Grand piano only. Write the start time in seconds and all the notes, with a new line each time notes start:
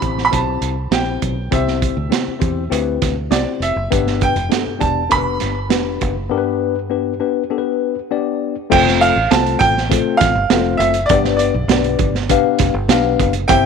Already playing: B5
0.25 B5
0.33 A5
0.93 G5
1.53 E5
3.31 D5
3.63 E5
4.23 G5
4.81 A5
5.12 B5
8.72 G5
9.01 F5
9.31 A5
9.59 G5
10.17 F5
10.77 E5
11.06 D5
11.37 D5
13.48 G5